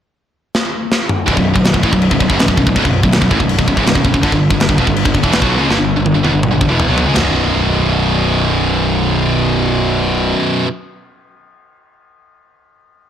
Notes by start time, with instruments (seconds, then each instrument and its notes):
0.55 snare
0.92 snare
1.09 mid tom
1.26 picked electric bass B0, distorted electric guitar B1 F#2, kick, crash
1.37 picked electric bass B0, distorted electric guitar B1 F#2, kick
1.54 picked electric bass B0, distorted electric guitar B1 F#2, kick
1.64 snare, crash
1.74 picked electric bass B0, distorted electric guitar B1 F#2, kick
1.83 picked electric bass A1, distorted electric guitar A2 E3, kick
1.93 picked electric bass B0, distorted electric guitar B1 F#2, kick
2.02 crash
2.11 picked electric bass B0, distorted electric guitar B1 F#2, kick
2.20 picked electric bass B0, distorted electric guitar B1 F#2, kick
2.30 picked electric bass F#1, distorted electric guitar F#2 C#3, kick
2.39 picked electric bass B0, distorted electric guitar B1 F#2, snare, crash
2.48 picked electric bass B0, distorted electric guitar B1 F#2, kick
2.57 picked electric bass B0, distorted electric guitar B1 F#2, kick
2.67 picked electric bass B0, distorted electric guitar B1 F#2, kick
2.76 picked electric bass B0, distorted electric guitar B1 F#2, kick, crash
2.85 picked electric bass B0, distorted electric guitar B1 F#2, kick
3.03 picked electric bass B0, distorted electric guitar B1 F#2, kick
3.12 snare, crash
3.21 picked electric bass B0, distorted electric guitar B1 F#2, kick
3.30 picked electric bass A1, distorted electric guitar A2 E3, kick
3.39 picked electric bass B0, distorted electric guitar B1 F#2, kick
3.49 crash
3.58 picked electric bass B0, distorted electric guitar B1 F#2, kick
3.68 picked electric bass B0, distorted electric guitar B1 F#2, kick
3.77 picked electric bass F#1, distorted electric guitar F#2 C#3, kick
3.86 picked electric bass B0, distorted electric guitar B1 F#2, snare, crash
3.95 picked electric bass B0, distorted electric guitar B1 F#2, kick
4.04 picked electric bass B0, distorted electric guitar B1 F#2, kick
4.14 picked electric bass B0, distorted electric guitar B1 F#2, kick
4.22 picked electric bass G1, distorted electric guitar G2 D3, kick, crash
4.32 picked electric bass G1, distorted electric guitar G2 D3, kick
4.50 picked electric bass G1, distorted electric guitar G2 D3, kick
4.60 snare, crash
4.69 picked electric bass G1, distorted electric guitar G2 D3, kick
4.78 picked electric bass E1, distorted electric guitar E2 B2, kick
4.87 picked electric bass G1, distorted electric guitar G2 D3, kick
4.96 crash
5.05 picked electric bass G1, distorted electric guitar G2 D3, kick
5.14 picked electric bass G1, distorted electric guitar G2 D3, kick
5.23 picked electric bass E1, distorted electric guitar E2 B2 E3, kick
5.32 snare, crash
5.41 picked electric bass B1, distorted electric guitar B2 F#3 B3, kick
5.59 picked electric bass C#2, distorted electric guitar C#3 G#3
5.68 picked electric bass G1, distorted electric guitar G2 D3, snare
5.79 picked electric bass G1, distorted electric guitar G2 D3
5.96 picked electric bass G1, distorted electric guitar G2 D3
6.06 high tom
6.15 picked electric bass G1, distorted electric guitar G2 D3
6.23 picked electric bass E1, distorted electric guitar E2 B2, high tom
6.33 picked electric bass G1, distorted electric guitar G2 D3
6.43 mid tom
6.51 picked electric bass G1, distorted electric guitar G2 D3
6.61 picked electric bass G1, distorted electric guitar G2 D3, kick
6.69 picked electric bass E1, distorted electric guitar E2 B2 E3
6.80 floor tom
6.87 picked electric bass B1, distorted electric guitar B2 F#3 B3
6.98 floor tom
7.06 picked electric bass C#2, distorted electric guitar C#3 G#3
7.13 picked electric bass B0, distorted electric guitar B1 F#2, snare, floor tom, ride bell
7.17 distorted electric guitar B2